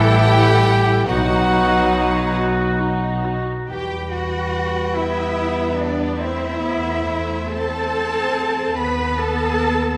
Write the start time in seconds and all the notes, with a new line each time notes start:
Already playing: A1 E3 G3 A3 E4 G4 A4 B4 G5
0.21 G4
1.04 B1 B2 F#3 B3 D#4 F#4 B4 F#5
2.37 F#4
2.80 D#4
3.25 F#4
3.68 E2 G3 G4 B4 G5
4.12 F#4 F#5
4.96 B3 E4 E5
5.77 D4 D5
6.17 A3 C4 E4 C5 E5
6.63 B3
7.08 A3
7.53 C4 A4 A5
8.75 D#2 B3 B4 B5
9.17 A4 A5